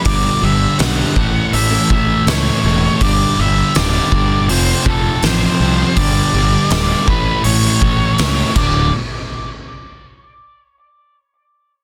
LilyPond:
<<
  \new Staff \with { instrumentName = "Lead electric guitar" } { \time 4/4 \key g \lydian \tempo 4 = 81 d''8 e''8 fis''4 e''8 e''8 cis''4 | d''8 e''8 d''4 c''8 a'8 c''4 | d''4 d''8 b'8 cis''4. d''8 | r1 | }
  \new Staff \with { instrumentName = "Clean electric guitar" } { \time 4/4 \key g \lydian r8 <g b d' g'>16 r8 <g b d' g'>16 r8. <a cis' e' a'>16 r8 <a cis' e' a'>16 r8. | r1 | r1 | r1 | }
  \new Staff \with { instrumentName = "Distorted electric guitar" } { \clef bass \time 4/4 \key g \lydian <g, d g>8 <g, d g>8 <g, d g>8 <a, e a>8 <a, e a>8 <a, e a>8 <a, e a>8 <a, e a>8 | <g, d g>8 <g, d g>8 <g, d g>8 <g, d g>8 <f, c f>8 <f, c f>8 <f, c f>8 <f, c f>8 | <g, d g>8 <g, d g>8 <g, d g>8 <a, e a>8 <a, e a>8 <a, e a>8 <a, e a>8 <d, a, d>8 | r1 | }
  \new Staff \with { instrumentName = "Distorted electric guitar" } { \clef bass \time 4/4 \key g \lydian <g, d g>8 <g, d g>8 <g, d g>8 <a, e a>8 <a, e a>8 <a, e a>8 <a, e a>8 <a, e a>8 | <g, d g>8 <g, d g>8 <g, d g>8 <g, d g>8 <f, c f>8 <f, c f>8 <f, c f>8 <f, c f>8 | <g, d g>8 <g, d g>8 <g, d g>8 <a, e a>8 <a, e a>8 <a, e a>8 <a, e a>8 <d, a, d>8 | r1 | }
  \new Staff \with { instrumentName = "Fingered electric bass" } { \clef bass \time 4/4 \key g \lydian g,,8 g,,8 b,,8 a,,8 a,,8 a,,8 cis,8 e,,8 | g,,8 g,,8 d,,8 g,,8 f,,8 f,,8 a,,8 c,8 | g,,8 g,,8 d,,8 a,,8 a,,8 a,,8 cis,8 d,,8 | r1 | }
  \new DrumStaff \with { instrumentName = "Drums" } \drummode { \time 4/4 <hho bd>4 <hho sn>8 bd8 hho8 bd8 <hho sn>4 | <hho bd>4 <hho sn>8 bd8 hho8 bd8 <hho sn>4 | <hho bd>4 <hho sn>8 bd8 hho8 bd8 <hho sn>8 <cymc bd>8 | r4 r4 r4 r4 | }
>>